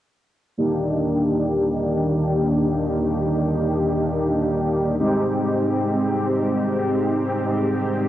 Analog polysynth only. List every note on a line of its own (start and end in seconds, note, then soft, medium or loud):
0.58 4.95 A#3 medium
0.58 4.95 D4 medium
0.58 4.95 D#4 medium
0.58 4.96 G4 medium
4.99 8.08 G#3 medium
4.99 8.08 C4 medium
4.99 8.08 D#4 medium
4.99 8.08 G4 medium